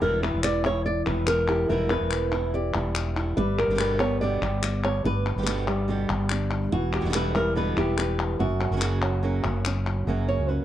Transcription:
0.01 fretless electric bass E1, nylon-string guitar B2 D3 E3 G3 B3 E4 A#4
0.22 nylon-string guitar G3 B3 E4 B4
0.34 fretless electric bass E1
0.44 nylon-string guitar D5, clap
0.65 nylon-string guitar G3 B3 E4 C#5
0.86 nylon-string guitar D5, muted nylon-string guitar stroke
1.06 fretless electric bass E1, nylon-string guitar G3 B3 E4 B4
1.27 nylon-string guitar A#4, clap
1.48 nylon-string guitar G3 B3 E4 G4, clap
1.69 fretless electric bass E1, nylon-string guitar B2 D3 E3 G3 B3 E4 A#4
1.90 nylon-string guitar G3 B3 E4 B4
2.01 fretless electric bass E1
2.11 clap
2.32 nylon-string guitar G3 B3 E4
2.54 nylon-string guitar G4 D5, muted nylon-string guitar stroke
2.75 fretless electric bass E1, nylon-string guitar G3 B3 E4
2.95 clap
3.16 nylon-string guitar G3 B3 E4, clap
3.37 fretless electric bass G1, nylon-string guitar G3 B4, muted nylon-string guitar stroke
3.59 nylon-string guitar A#4
3.68 fretless electric bass G1, nylon-string guitar D3 G3 B3 G4
3.75 nylon-string guitar D3 G3 B3 G4 B4, clap
3.79 nylon-string guitar B2 D3 G3 B3 G4
3.99 nylon-string guitar G3 B3 G4 C#5, clap
4.21 nylon-string guitar B2 D3 G3 B3 G4 D5
4.42 fretless electric bass G1, nylon-string guitar G3 B3 G4
4.62 muted nylon-string guitar stroke, clap
4.84 nylon-string guitar C#5
5.04 fretless electric bass G1, nylon-string guitar G2 B4, muted nylon-string guitar stroke
5.36 fretless electric bass G1, nylon-string guitar D3 G3 B3 G4
5.42 nylon-string guitar D3 G3 B3 G4
5.47 nylon-string guitar B2 D3 G3 B3 G4, clap
5.67 nylon-string guitar G3 B3 G4
5.88 nylon-string guitar B2 D3 G3 B3 G4
6.09 fretless electric bass G1, nylon-string guitar G3 B3 G4
6.30 nylon-string guitar D4, muted nylon-string guitar stroke, clap
6.72 fretless electric bass E1, nylon-string guitar E3 F#4, muted nylon-string guitar stroke
6.94 nylon-string guitar G4
7.01 fretless electric bass E1, nylon-string guitar D3 G3 B3 E4
7.05 nylon-string guitar D3 G3 B3 E4
7.10 nylon-string guitar D3 G3 B3 E4
7.14 nylon-string guitar B2 D3 G3 B3 E4 B4, clap
7.34 nylon-string guitar G3 B3 E4 A#4
7.56 nylon-string guitar B2 D3 G3 B3 E4 B4
7.77 fretless electric bass E1, nylon-string guitar G3 B3 E4 G4
7.98 nylon-string guitar B4, muted nylon-string guitar stroke, clap
8.39 fretless electric bass F#1, nylon-string guitar F#2 F#4, muted nylon-string guitar stroke
8.61 nylon-string guitar C#4
8.71 fretless electric bass F#1, nylon-string guitar F#3 A#3 C#4 F#4
8.77 nylon-string guitar F#3 A#3 C#4 F#4
8.81 nylon-string guitar C#3 F#3 A#3 C#4 F#4, clap
9.02 nylon-string guitar F#3 A#3 C#4 F#4
9.23 nylon-string guitar C#3 F#3 A#3 C#4 F#4
9.44 fretless electric bass F#1, nylon-string guitar A#3 C#4 F#4
9.65 nylon-string guitar C#4, muted nylon-string guitar stroke, clap
9.86 clap
10.07 fretless electric bass F#1, nylon-string guitar F#2 C#3 F#3 A#3 C#4 F#4
10.28 nylon-string guitar C#5
10.39 fretless electric bass C#2
10.49 nylon-string guitar A#3 C#4 F#4 B4

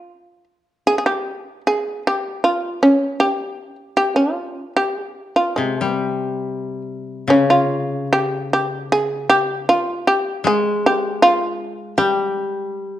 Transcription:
Already playing: shamisen F4
0.87 shamisen G#4
0.98 shamisen G#4
1.06 shamisen G4
1.67 shamisen G#4
2.07 shamisen G4
2.44 shamisen F4
2.83 shamisen C#4
3.20 shamisen G4
3.97 shamisen G4
4.16 shamisen F4
4.77 shamisen G4
5.36 shamisen F4
5.56 koto C3, shamisen G#3
5.81 koto G3
5.97 shamisen C4
7.27 koto C#3, shamisen C#4
7.50 shamisen F4
8.13 shamisen G4
8.53 shamisen G4
8.92 shamisen G#4
9.30 shamisen G4
9.69 shamisen F4
10.07 shamisen G4
10.44 koto G#3, shamisen G#4
10.86 shamisen G4
11.22 shamisen F4
11.98 koto G3, shamisen G4

